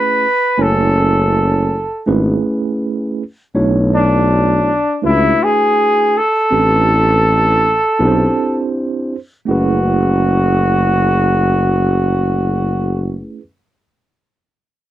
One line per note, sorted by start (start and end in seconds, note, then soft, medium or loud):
0.00 0.25 A3 medium
0.00 0.26 C#4 medium
0.00 0.26 E4 medium
0.00 0.26 G#4 medium
0.00 0.26 B4 medium
0.00 0.63 B4 loud
0.58 1.87 F#1 loud
0.58 1.73 A3 medium
0.58 1.74 C#4 medium
0.58 1.74 E4 medium
0.58 1.74 C#5 medium
0.58 1.74 G#5 medium
0.62 2.08 A4 medium
2.06 2.35 G#1 loud
2.06 3.22 A3 medium
2.06 3.22 C#4 medium
2.06 3.22 E4 medium
2.06 3.22 G#4 medium
2.06 3.23 B4 medium
3.55 4.84 B1 loud
3.55 4.70 A3 medium
3.55 4.70 D4 medium
3.55 4.70 E4 medium
3.55 4.70 F#4 medium
3.55 4.71 C#5 medium
3.94 5.00 D4 medium
5.02 5.32 C#2 medium
5.02 6.18 A3 medium
5.02 6.18 D4 medium
5.02 6.19 E4 medium
5.02 5.45 E4 medium
5.02 6.19 F#4 medium
5.02 6.19 B4 medium
5.43 6.19 G#4 loud
6.17 8.75 A4 loud
6.50 7.80 A1 loud
6.50 7.66 C4 medium
6.50 7.67 D4 medium
6.50 7.67 E4 medium
6.50 7.67 G4 medium
6.50 7.67 B4 medium
7.99 8.28 B1 medium
7.99 9.15 C4 medium
7.99 9.15 D4 medium
7.99 9.15 E4 medium
7.99 9.15 G4 medium
7.99 8.08 B4 medium
8.07 9.19 C5 medium
9.45 13.20 F#1 medium
9.45 13.37 A3 medium
9.45 13.39 C#4 medium
9.45 13.40 E4 medium
9.45 13.21 F#4 medium
9.50 13.42 G#4 medium
9.50 13.43 B4 medium